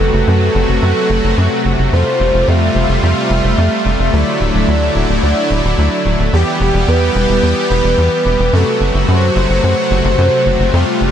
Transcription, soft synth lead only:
Already playing: A4
0.83 A4
1.93 C5
2.48 E5
3.04 E5
4.13 D5
5.23 D5
6.33 G4
6.88 B4
7.16 B4
8.54 A4
9.09 C5
9.64 C5
10.74 G4

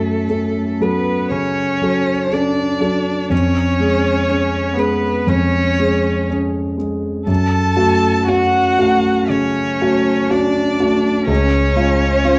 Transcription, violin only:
Already playing: A4
0.82 B4
1.32 C#5
2.34 D5
3.33 C#5
4.79 B4
5.29 C#5
7.30 A5
8.29 F#5
9.30 C#5
10.31 D5
11.28 C#5

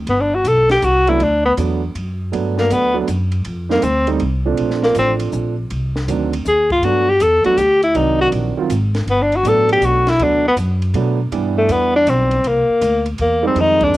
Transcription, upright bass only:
0.07 G1
0.44 B1
0.82 C2
1.20 D2
1.57 E2
1.95 F#2
2.33 G2
2.70 D2
3.08 F#2
3.46 F2
3.83 D2
4.20 C2
4.58 A#1
4.95 A1
5.33 A#1
5.70 C2
6.08 D2
6.46 D#2
6.82 G2
7.20 E2
7.45 muted upright bass stroke
7.57 D2
7.94 C2
8.32 A#1
8.58 muted upright bass stroke
8.70 G#1
9.06 G1
9.43 A1
9.81 B1
10.20 D2
10.56 F#2
10.94 B2
11.31 G2
11.69 E2
12.06 B1
12.44 C2
12.69 muted upright bass stroke
12.81 D2
13.19 E2
13.55 F2

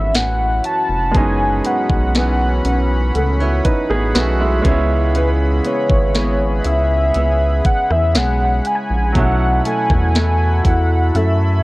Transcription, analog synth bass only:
Already playing: G#1
0.14 A1
0.89 F1
1.15 F#1
1.90 B1
2.65 B1
3.15 C#2
3.90 A1
4.15 B1
4.65 C#2
5.90 G#1
6.66 C#2
7.16 C#2
7.91 E2
8.15 B1
8.90 A#1
9.15 B1
9.90 E2
10.65 E2
11.15 F#2

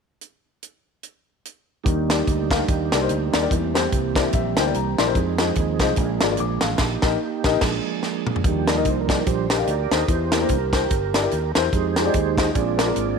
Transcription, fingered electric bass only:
1.86 D#2
2.27 D2
2.69 D#2
2.92 C2
3.10 D2
3.34 D#2
3.51 E2
3.93 C2
4.34 A#1
4.58 D2
4.75 C2
4.99 A#1
5.15 F2
5.57 D#2
5.80 C2
5.98 A#1
6.22 G#1
6.39 A#1
6.62 A1
6.79 A#1
7.03 A#1
7.45 A#1
7.62 A#1
8.44 D#2
8.86 C2
9.27 A#1
9.67 D2
9.91 D#2
10.08 E2
10.50 C2
10.91 G1
11.32 D#2
11.56 E2
11.73 F2
12.15 D#2
12.56 A#1
12.96 G#1

